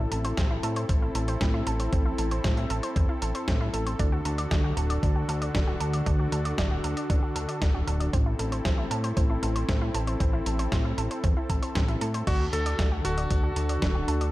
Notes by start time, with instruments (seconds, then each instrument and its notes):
Already playing: analog synth pad C4 E4 A4
0.12 analog synth bass A1, synth arpeggio sound A4, closed hi-hat
0.25 synth arpeggio sound C5, closed hi-hat
0.37 analog synth bass A1, synth arpeggio sound C4, kick, snare, closed hi-hat
0.50 synth arpeggio sound E4
0.63 analog synth bass A2, synth arpeggio sound A4, closed hi-hat
0.76 synth arpeggio sound C5, closed hi-hat
0.89 analog synth bass A1, synth arpeggio sound C4, kick, closed hi-hat
1.02 synth arpeggio sound E4
1.15 analog synth bass A1, synth arpeggio sound A4, closed hi-hat
1.28 synth arpeggio sound C5, closed hi-hat
1.41 analog synth bass A2, synth arpeggio sound C4, kick, snare, closed hi-hat
1.54 synth arpeggio sound E4
1.67 analog synth bass A1, synth arpeggio sound A4, closed hi-hat
1.80 synth arpeggio sound C5, closed hi-hat
1.93 analog synth bass A1, synth arpeggio sound C4, kick, closed hi-hat
2.06 synth arpeggio sound E4
2.18 analog synth bass A1, synth arpeggio sound A4, closed hi-hat
2.31 synth arpeggio sound C5, closed hi-hat
2.44 analog synth bass A2, synth arpeggio sound C4, kick, snare, closed hi-hat
2.57 synth arpeggio sound E4, closed hi-hat
2.70 analog synth bass A1, synth arpeggio sound A4, closed hi-hat
2.83 synth arpeggio sound C5, closed hi-hat
2.96 analog synth bass E2, synth arpeggio sound C4, kick, closed hi-hat
3.09 synth arpeggio sound E4
3.22 analog synth bass A1, synth arpeggio sound A4, closed hi-hat
3.35 synth arpeggio sound C5, closed hi-hat
3.48 analog synth bass A2, synth arpeggio sound C4, kick, snare, closed hi-hat
3.61 synth arpeggio sound E4
3.74 analog synth bass A1, synth arpeggio sound A4, closed hi-hat
3.86 synth arpeggio sound C5, closed hi-hat
3.99 analog synth bass D2, analog synth pad D3 D4 F#4, synth arpeggio sound D4, kick, closed hi-hat
4.12 synth arpeggio sound F#4
4.25 analog synth bass D2, synth arpeggio sound A4, closed hi-hat
4.38 synth arpeggio sound D5, closed hi-hat
4.51 analog synth bass D2, synth arpeggio sound D4, kick, snare, closed hi-hat
4.64 synth arpeggio sound F#4
4.77 analog synth bass D1, synth arpeggio sound A4, closed hi-hat
4.90 synth arpeggio sound D5, closed hi-hat
5.03 analog synth bass D2, synth arpeggio sound D4, kick, closed hi-hat
5.16 synth arpeggio sound F#4
5.29 analog synth bass D2, synth arpeggio sound A4, closed hi-hat
5.42 synth arpeggio sound D5, closed hi-hat
5.55 analog synth bass D1, synth arpeggio sound D4, kick, snare, closed hi-hat
5.67 synth arpeggio sound F#4
5.80 analog synth bass D2, synth arpeggio sound A4, closed hi-hat
5.93 synth arpeggio sound D5, closed hi-hat
6.06 analog synth bass D2, synth arpeggio sound D4, kick, closed hi-hat
6.19 synth arpeggio sound F#4
6.32 analog synth bass D2, synth arpeggio sound A4, closed hi-hat
6.45 synth arpeggio sound D5, closed hi-hat
6.58 analog synth bass D1, synth arpeggio sound D4, kick, snare, closed hi-hat
6.71 synth arpeggio sound F#4
6.84 analog synth bass D2, synth arpeggio sound A4, closed hi-hat
6.97 synth arpeggio sound D5, closed hi-hat
7.10 analog synth bass A1, synth arpeggio sound D4, kick, closed hi-hat
7.23 synth arpeggio sound F#4
7.36 analog synth bass D2, synth arpeggio sound A4, closed hi-hat
7.48 synth arpeggio sound D5, closed hi-hat
7.62 analog synth bass D1, synth arpeggio sound D4, kick, snare, closed hi-hat
7.74 synth arpeggio sound F#4
7.87 analog synth bass D1, synth arpeggio sound A4, closed hi-hat
8.00 synth arpeggio sound D5, closed hi-hat
8.13 analog synth bass A1, synth arpeggio sound C4, analog synth pad C4 E4 A4, kick, closed hi-hat
8.26 synth arpeggio sound E4
8.39 analog synth bass A1, synth arpeggio sound A4, closed hi-hat
8.52 synth arpeggio sound C5, closed hi-hat
8.65 analog synth bass A1, synth arpeggio sound C4, kick, snare, closed hi-hat
8.78 synth arpeggio sound E4
8.91 analog synth bass A2, synth arpeggio sound A4, closed hi-hat
9.04 synth arpeggio sound C5, closed hi-hat
9.17 analog synth bass A1, synth arpeggio sound C4, kick, closed hi-hat
9.30 synth arpeggio sound E4
9.43 analog synth bass A1, synth arpeggio sound A4, closed hi-hat
9.56 synth arpeggio sound C5, closed hi-hat
9.69 analog synth bass A2, synth arpeggio sound C4, kick, snare, closed hi-hat
9.82 synth arpeggio sound E4
9.94 analog synth bass A1, synth arpeggio sound A4, closed hi-hat
10.07 synth arpeggio sound C5, closed hi-hat
10.20 analog synth bass A1, synth arpeggio sound C4, kick, closed hi-hat
10.33 synth arpeggio sound E4
10.46 analog synth bass A1, synth arpeggio sound A4, closed hi-hat
10.59 synth arpeggio sound C5, closed hi-hat
10.72 analog synth bass A2, synth arpeggio sound C4, kick, snare, closed hi-hat
10.85 synth arpeggio sound E4
10.98 analog synth bass A1, synth arpeggio sound A4, closed hi-hat
11.11 synth arpeggio sound C5, closed hi-hat
11.24 analog synth bass E2, synth arpeggio sound C4, kick, closed hi-hat
11.37 synth arpeggio sound E4
11.50 analog synth bass A1, synth arpeggio sound A4, kick, closed hi-hat
11.62 synth arpeggio sound C5, closed hi-hat
11.75 analog synth bass A1, synth arpeggio sound C4, kick, snare, closed hi-hat
11.88 synth arpeggio sound E4, closed hi-hat
12.01 analog synth bass A2, synth arpeggio sound A4, closed hi-hat
12.14 synth arpeggio sound C5, closed hi-hat
12.27 analog synth bass D2, analog synth pad D3 D4 F#4, synth arpeggio sound D4, electric grand piano F#4, kick, closed hi-hat, crash
12.40 synth arpeggio sound F#4
12.53 analog synth bass D2, electric grand piano A4, synth arpeggio sound A4, closed hi-hat
12.66 synth arpeggio sound D5, closed hi-hat
12.79 analog synth bass D2, synth arpeggio sound D4, kick, snare, closed hi-hat
12.92 synth arpeggio sound F#4
13.04 analog synth bass D1, electric grand piano F#4, synth arpeggio sound A4, closed hi-hat
13.18 synth arpeggio sound D5, closed hi-hat
13.30 analog synth bass D2, synth arpeggio sound D4, kick, closed hi-hat
13.44 synth arpeggio sound F#4
13.56 analog synth bass D2, synth arpeggio sound A4, closed hi-hat
13.69 synth arpeggio sound D5, closed hi-hat
13.82 analog synth bass D1, synth arpeggio sound D4, kick, snare, closed hi-hat
13.95 synth arpeggio sound F#4
14.08 analog synth bass D2, synth arpeggio sound A4, closed hi-hat
14.21 synth arpeggio sound D5, closed hi-hat